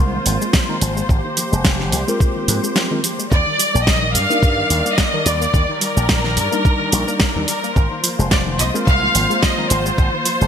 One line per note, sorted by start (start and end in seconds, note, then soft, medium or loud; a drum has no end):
0.00 0.18 C2 medium
0.00 0.65 G#3 medium
0.00 3.27 A#3 medium
0.00 0.65 C4 medium
0.00 0.65 F4 medium
0.00 1.07 F4 medium
0.00 0.66 A#4 medium
0.00 3.27 C5 medium
0.13 0.23 D#3 medium
0.26 0.36 G#1 medium
0.26 0.37 F3 medium
0.26 open hi-hat loud
0.26 shaker medium
0.41 0.48 G#3 loud
0.41 shaker soft
0.53 0.61 F3 medium
0.53 kick loud
0.53 snare loud
0.53 shaker soft
0.69 0.78 D#3 loud
0.69 0.77 G#3 medium
0.69 0.77 C4 medium
0.69 0.77 F4 medium
0.69 0.77 A#4 medium
0.81 1.01 G#1 medium
0.81 0.89 F3 medium
0.81 open hi-hat loud
0.81 shaker medium
0.97 1.06 G#3 medium
0.97 shaker soft
1.08 1.19 G#1 loud
1.08 1.17 C3 medium
1.08 3.29 G4 medium
1.08 kick loud
1.08 shaker soft
1.24 1.34 D#3 medium
1.37 1.48 F3 medium
1.37 open hi-hat loud
1.37 shaker medium
1.52 1.93 F1 medium
1.52 1.58 G#3 loud
1.52 shaker soft
1.65 1.69 C3 medium
1.65 kick loud
1.65 snare loud
1.65 shaker soft
1.80 1.90 D#3 medium
1.80 snare soft
1.92 2.03 C2 loud
1.92 2.00 F3 medium
1.92 open hi-hat loud
1.92 shaker medium
2.07 2.87 G#3 medium
2.07 2.17 G#3 loud
2.07 2.87 C4 medium
2.07 2.88 F4 medium
2.07 2.88 A#4 medium
2.07 shaker soft
2.20 2.28 C3 medium
2.20 kick loud
2.20 shaker soft
2.36 2.45 D#3 medium
2.48 2.58 G#2 loud
2.48 2.60 F3 medium
2.48 open hi-hat loud
2.48 shaker medium
2.63 2.70 G#3 loud
2.63 shaker soft
2.76 2.83 F3 medium
2.76 snare loud
2.76 shaker soft
2.91 3.00 D#3 loud
2.91 2.99 G#3 medium
2.91 2.99 C4 medium
2.91 2.99 F4 medium
2.91 2.99 A#4 medium
3.03 3.11 F3 medium
3.03 open hi-hat loud
3.03 shaker medium
3.19 3.28 G#3 medium
3.19 shaker soft
3.31 3.42 D#2 loud
3.31 3.39 D3 medium
3.31 7.72 D#3 medium
3.31 7.72 G3 medium
3.31 3.83 D5 loud
3.31 7.72 D5 medium
3.31 kick loud
3.31 shaker soft
3.46 3.56 D#3 medium
3.59 3.71 G3 medium
3.59 open hi-hat loud
3.59 shaker medium
3.74 4.16 A#1 medium
3.74 3.81 A#3 loud
3.74 shaker soft
3.87 3.92 D3 medium
3.87 4.15 D#5 loud
3.87 kick loud
3.87 snare loud
3.87 shaker soft
4.02 4.12 D#3 medium
4.14 4.25 G2 loud
4.14 4.22 G3 medium
4.14 4.94 F5 loud
4.14 open hi-hat loud
4.14 shaker medium
4.29 5.09 G3 medium
4.29 4.39 A#3 loud
4.29 5.10 D4 medium
4.29 5.10 D#4 medium
4.29 5.11 A#4 medium
4.29 shaker soft
4.43 4.62 G2 medium
4.43 4.50 D3 medium
4.43 kick loud
4.43 shaker soft
4.58 4.67 D#3 medium
4.70 4.80 D#2 medium
4.70 4.82 G3 medium
4.70 open hi-hat loud
4.70 shaker medium
4.86 4.92 A#3 loud
4.86 shaker soft
4.97 5.09 A#3 medium
4.97 5.25 D#5 loud
4.97 kick loud
4.97 snare loud
4.97 shaker soft
5.13 5.23 D#3 loud
5.13 5.21 G3 medium
5.13 5.21 D4 medium
5.13 5.21 D#4 medium
5.13 5.22 A#4 medium
5.25 5.45 D#2 loud
5.25 5.33 G3 medium
5.25 5.81 D5 loud
5.25 open hi-hat loud
5.25 shaker medium
5.41 5.51 A#3 medium
5.41 shaker soft
5.54 5.64 D#2 loud
5.54 5.61 D3 medium
5.54 kick loud
5.54 shaker soft
5.69 5.78 D#3 medium
5.80 5.93 G3 medium
5.80 7.47 A#4 loud
5.80 open hi-hat loud
5.80 shaker medium
5.97 6.38 A#1 medium
5.97 6.03 A#3 loud
5.97 shaker soft
6.09 6.14 D3 medium
6.09 kick loud
6.09 snare loud
6.09 shaker soft
6.24 6.34 D#3 medium
6.24 snare soft
6.37 6.47 G2 loud
6.37 6.44 G3 medium
6.37 open hi-hat loud
6.37 shaker medium
6.52 7.32 G3 medium
6.52 6.61 A#3 loud
6.52 7.32 D4 medium
6.52 7.32 D#4 medium
6.52 7.33 A#4 medium
6.52 shaker soft
6.64 6.72 D3 medium
6.64 kick loud
6.64 shaker soft
6.80 6.89 D#3 medium
6.92 7.03 A#1 loud
6.92 7.04 G3 medium
6.92 open hi-hat loud
6.92 shaker medium
7.08 7.14 A#3 loud
7.08 shaker soft
7.20 7.32 A#3 medium
7.20 kick loud
7.20 snare loud
7.20 shaker soft
7.36 7.44 D#2 loud
7.36 7.45 D#3 loud
7.36 7.43 G3 medium
7.36 7.44 D4 medium
7.36 7.44 D#4 medium
7.36 7.44 A#4 medium
7.48 7.56 G3 medium
7.48 8.00 A#4 medium
7.48 open hi-hat loud
7.48 shaker medium
7.64 7.73 A#3 medium
7.64 shaker soft
7.76 7.86 G#1 loud
7.76 7.84 C3 medium
7.76 10.47 A#3 medium
7.76 10.47 F4 medium
7.76 10.47 C5 medium
7.76 kick loud
7.76 shaker soft
7.91 8.01 D#3 medium
8.04 8.15 F3 medium
8.04 open hi-hat loud
8.04 shaker medium
8.19 8.61 F1 medium
8.19 8.25 G#3 loud
8.19 shaker soft
8.31 8.36 C3 medium
8.31 8.44 D5 loud
8.31 kick loud
8.31 snare loud
8.31 shaker soft
8.47 8.56 D#3 medium
8.59 8.69 C2 loud
8.59 8.67 F3 medium
8.59 8.72 D#5 loud
8.59 open hi-hat loud
8.59 shaker medium
8.73 9.54 G#3 medium
8.73 8.84 G#3 loud
8.73 9.54 C4 medium
8.73 9.54 F4 medium
8.73 9.55 A#4 medium
8.73 shaker soft
8.87 9.07 C2 medium
8.87 8.94 C3 medium
8.87 9.39 F5 loud
8.87 kick loud
8.87 shaker soft
9.02 9.11 D#3 medium
9.14 9.25 G#1 medium
9.14 9.26 F3 medium
9.14 open hi-hat loud
9.14 shaker medium
9.30 9.36 G#3 loud
9.30 shaker soft
9.42 9.54 G#3 medium
9.42 9.70 D#5 loud
9.42 kick loud
9.42 snare loud
9.42 shaker soft
9.57 9.67 D#3 loud
9.57 9.65 G#3 medium
9.57 9.66 C4 medium
9.57 9.66 F4 medium
9.57 9.66 A#4 medium
9.69 9.90 G#1 loud
9.69 9.78 F3 medium
9.69 10.47 C5 medium
9.69 open hi-hat loud
9.69 shaker medium
9.86 9.95 G#3 medium
9.86 shaker soft
9.98 10.08 G#1 loud
9.98 10.06 C3 medium
9.98 kick loud
9.98 shaker soft
10.13 10.23 D#3 medium
10.25 10.37 F3 medium
10.25 open hi-hat loud
10.25 shaker medium
10.41 10.47 F1 medium
10.41 10.47 G#3 loud
10.41 shaker soft